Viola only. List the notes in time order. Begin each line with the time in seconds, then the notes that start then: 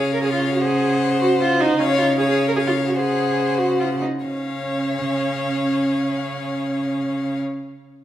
Already playing: G#4
0.14 A#4
0.23 G#4
0.32 F4
0.51 F#4
0.61 G#4
1.21 F#4
1.41 F4
1.60 D#4
1.80 C#4
1.98 F4
2.18 G#4
2.28 G#4
2.48 A#4
2.56 G#4
2.67 F4
2.86 F#4
2.95 G#4
3.58 F#4
3.80 F4
4.01 D#4
4.26 C#4